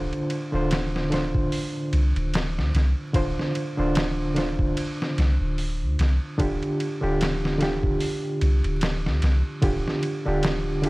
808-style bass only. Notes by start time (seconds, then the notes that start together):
Already playing: D1
0.54 D1
1.93 C2
2.16 D1
2.57 D2
2.74 C2
3.15 D1
3.79 D1
5.18 C2
5.41 D1
5.82 D2
5.99 C2
6.39 D1
7.03 D1
8.42 C2
8.65 D1
9.06 D2
9.23 C2
9.63 D1
10.28 D1